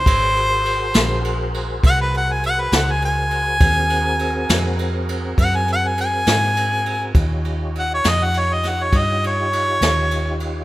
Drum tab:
RD |xxxxxxxxxxxx|xxxxxxxxxxxx|xxxxxxxxxxxx|
SD |---o-----o--|---o-----o--|---o-o---o--|
BD |o-----o-----|o-----o-----|o-----o-----|